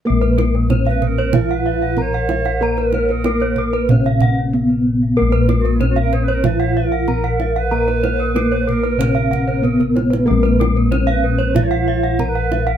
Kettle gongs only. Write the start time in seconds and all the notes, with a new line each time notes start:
0.05 A#4
0.10 A#1
0.70 B3
1.97 B3
2.61 A#4
3.25 B3
3.89 A#2
4.54 B3
5.17 A#4
5.22 A#1
5.81 B3
7.08 B3
7.71 A#4
8.34 B3
8.98 A#2
9.62 B3
10.26 A#4
10.31 A#1
10.90 B3
12.19 B3